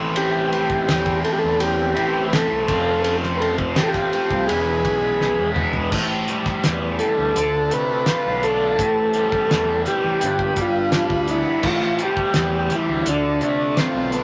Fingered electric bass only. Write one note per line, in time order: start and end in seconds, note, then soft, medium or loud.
0.00 0.84 A1 medium
0.88 1.21 E2 medium
1.44 1.93 E2 medium
1.97 2.46 A1 medium
2.51 2.67 C2 medium
2.69 3.73 F1 loud
3.76 4.09 A1 medium
4.30 4.47 C2 medium
4.49 4.81 E1 loud
4.85 5.34 B1 medium
5.39 5.88 E1 loud
5.92 6.25 A1 medium
6.66 6.98 E2 medium
7.18 7.34 D2 medium
7.36 7.68 D2 loud
7.73 8.05 C3 medium
8.26 8.75 B1 medium
8.79 9.46 A1 medium
9.51 9.83 E2 medium
10.04 10.20 A1 medium
10.22 10.55 G1 loud
10.56 11.06 G1 medium
11.11 11.43 D2 medium
11.64 11.97 A1 loud
12.35 12.68 E2 medium
12.89 13.05 D2 medium
13.06 13.39 D2 loud
13.41 13.74 C3 medium
13.95 14.23 B1 medium